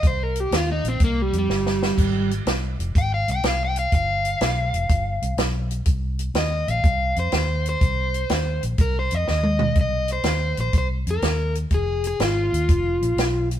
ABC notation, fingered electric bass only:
X:1
M:4/4
L:1/8
Q:"Swing" 1/4=123
K:Cm
V:1 name="Fingered electric bass" clef=bass
C,,2 E,, B,,, C,, F,, G,,,2 | A,,,2 C,, F,,, A,,, C,, C,,2 | G,,,2 =B,,, F,,, G,,, C,, B,,,2 | C,,2 E,, B,,, C,, F,, E,,2 |
C,,2 E,, B,,, C,, F,, E,,2 | C,,2 E,, B,,, C,, F,, E,,2 | F,,,2 A,,, E,, F,,, B,,, =B,,,2 |]